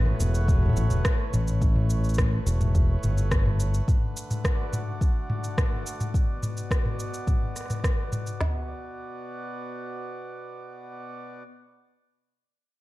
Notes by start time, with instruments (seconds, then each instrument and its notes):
Already playing: fingered electric bass A1, harmonium A2 A3 B3 F#4 B4
0.06 mid tom
0.11 harmonium C#5
0.20 fingered electric bass E1, shaker
0.35 shaker
0.48 kick, mid tom, shaker
0.52 mid tom
0.56 mid tom
0.59 mid tom
0.63 mid tom
0.66 mid tom
0.69 mid tom
0.73 fingered electric bass A1, mid tom, shaker
0.90 fingered electric bass E1, mid tom, shaker
1.05 kick, cross-stick, shaker
1.33 fingered electric bass A1, mid tom, shaker
1.48 shaker
1.62 kick, shaker
1.76 mid tom
1.90 shaker
2.04 shaker
2.09 shaker
2.14 shaker
2.18 kick, cross-stick, mid tom, shaker
2.46 fingered electric bass E1, shaker
2.61 mid tom, shaker
2.75 kick, shaker
3.03 fingered electric bass G1, mid tom, shaker
3.18 shaker
3.31 kick, cross-stick, shaker
3.46 mid tom
3.60 shaker
3.74 shaker
3.88 harmonium D3, kick, mid tom, shaker
4.17 shaker
4.31 mid tom, shaker
4.45 harmonium F#4, kick, cross-stick, shaker
4.54 harmonium D5
4.73 mid tom, shaker
5.01 kick, shaker
5.30 mid tom
5.44 shaker
5.58 kick, cross-stick, mid tom, shaker
5.87 shaker
6.01 mid tom, shaker
6.14 harmonium B2, kick, shaker
6.30 harmonium B3
6.43 mid tom, shaker
6.57 shaker
6.71 kick, cross-stick, shaker
6.85 mid tom
7.00 shaker
7.14 shaker
7.27 kick, mid tom, shaker
7.56 cross-stick, shaker
7.61 cross-stick
7.66 cross-stick
7.70 cross-stick, mid tom, shaker
7.75 cross-stick
7.80 cross-stick
7.84 kick, cross-stick, shaker
8.12 mid tom, shaker
8.27 shaker
8.41 harmonium B2, snare, floor tom
8.49 harmonium B3
8.58 harmonium F#4
8.67 harmonium D5